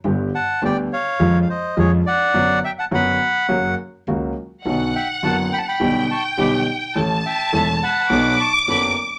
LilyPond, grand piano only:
\new Staff \with { instrumentName = "Grand piano" } { \clef bass \time 4/4 \key b \minor \tempo 4 = 104 <g,, g, d g b g'>8 r8 <d, d g b g'>8 r8 <eis, cis eis gis eis'>8 r8 <eis, cis eis gis eis'>8 r8 | <fis, d fis b fis'>8 r8 <fis, d fis b fis'>8 r8 <fis, cis fis ais fis'>8 r8 <cis, cis fis ais fis'>8 r8 | <b,, b, d fis b fis'>8 r8 <fis,, fis, d fis b fis'>8 r8 <b,, b, d g b g'>8 r8 <b,, b, d g b g'>8 r8 | <a,, a, e a cis' a'>8 r8 <e,, e, e a cis' a'>8 r8 <b,, b, fis b d' a'>8 r8 <fis,, fis, fis b d' a'>8 r8 | }